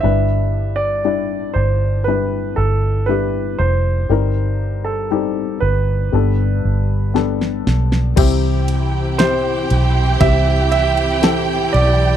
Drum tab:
CC |----------------|----------------|x---------------|
RD |----------------|----------------|x-x-x-x-x-xxx-x-|
SD |----------------|------------oooo|----o-------o---|
BD |----------------|----------------|o-------o-------|